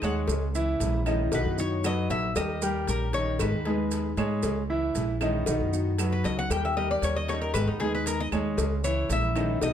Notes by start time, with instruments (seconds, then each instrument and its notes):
Already playing: nylon-string guitar G#3 B3 D#4 G#4
0.02 upright bass D#2, grand piano G#3 G#4 C#5, cuban tres F#5, cowbell, claves, maracas
0.28 upright bass C#2, muted nylon-string guitar stroke, cowbell, maracas
0.55 grand piano E3 E4 E5, maracas
0.80 upright bass A#1, nylon-string guitar E3 G#3 C#4 E4, cowbell, maracas
1.06 grand piano D#3 D#4 D#5, nylon-string guitar E3 G#3 C#4 E4, cowbell, claves, maracas
1.32 upright bass B1, nylon-string guitar B2 F#3 B3 D#4 F#4, grand piano D#3 D#4 D#5, cuban tres B4, cowbell, maracas
1.45 upright bass F#2
1.58 nylon-string guitar F#3 B3 D#4 F#4, cuban tres C#5, maracas
1.84 grand piano F#3 F#4 B4, cuban tres D#5, cowbell, claves, maracas
2.09 upright bass A#1, cuban tres E5, cowbell, maracas
2.35 upright bass D#2, grand piano G3 G4 A#4, cuban tres D#5, muted nylon-string guitar stroke, cowbell, claves, maracas
2.62 grand piano G3 G4 A#4, cuban tres G4, maracas
2.87 upright bass A#1, nylon-string guitar D#3 G3 C#4 G4, cuban tres A#4, cowbell, maracas
3.13 grand piano D#3 D#4 D#5, nylon-string guitar G3 C#4 G4, cuban tres C#5, cowbell, maracas
3.39 upright bass G#1, nylon-string guitar D#3 G#3 B3 D#4 G#4, cuban tres B4, cowbell, claves, maracas
3.52 upright bass D#2
3.65 grand piano G#3 G#4 B4, nylon-string guitar G#3 B3 D#4 G#4, cowbell
3.91 cowbell, maracas
4.17 upright bass G#2, grand piano G#3 G#4 C#5, cowbell, claves, maracas
4.43 upright bass C#2, muted nylon-string guitar stroke, cowbell, maracas
4.70 grand piano E3 E4 E5
4.95 upright bass A#1, nylon-string guitar E3 G#3 C#4 E4, cowbell, maracas
5.21 grand piano D#3 D#4 D#5, nylon-string guitar E3 G#3 C#4 E4, cowbell, claves, maracas
5.46 upright bass B1, nylon-string guitar B2 F#3 B3 D#4 F#4, grand piano D#3 D#4 D#5, cowbell, maracas
5.60 upright bass F#2
5.73 nylon-string guitar F#3 B3 D#4 F#4, maracas
5.98 grand piano F#3 F#4 B4, cowbell, claves, maracas
6.12 cuban tres B4
6.24 upright bass C#2, cuban tres D#5, cowbell, maracas
6.39 cuban tres F#5
6.50 upright bass D#2, grand piano G3 G4 A#4, cuban tres G5, muted nylon-string guitar stroke, cowbell, claves, maracas
6.65 cuban tres E5
6.77 grand piano G3 G4 A#4, cuban tres D#5
6.91 cuban tres D5
7.02 upright bass D#2, nylon-string guitar D#3 G3 C#4 G4, cuban tres C#5, cowbell, maracas
7.16 cuban tres D#5
7.28 grand piano D#3 D#4 D#5, nylon-string guitar G3 C#4 G4, cuban tres C#5, cowbell, maracas
7.41 cuban tres A#4
7.54 upright bass G#1, nylon-string guitar D#3 G#3 B3 D#4 G#4, cuban tres B4, cowbell, claves, maracas
7.66 upright bass D#2, cuban tres D#4
7.80 grand piano G#3 G#4 B4, nylon-string guitar G#3 B3 D#4 G#4, cuban tres G#4, cowbell
7.95 cuban tres B4
8.06 cuban tres A#4, cowbell, maracas
8.20 cuban tres D#5
8.32 upright bass D#2, grand piano G#3 G#4 C#5, cowbell, claves, maracas
8.57 upright bass C#2, muted nylon-string guitar stroke, cowbell, maracas
8.84 grand piano E3 E4 E5, cuban tres C#5, maracas
9.09 upright bass A#1, nylon-string guitar E3 G#3 C#4 E4, cuban tres E5, cowbell, maracas
9.36 grand piano D#3 D#4 D#5, nylon-string guitar E3 G#3 C#4 E4, cowbell, claves, maracas
9.61 upright bass B1, nylon-string guitar B2 F#3 B3 D#4 F#4, grand piano D#3 D#4 D#5, cuban tres D#5, cowbell, maracas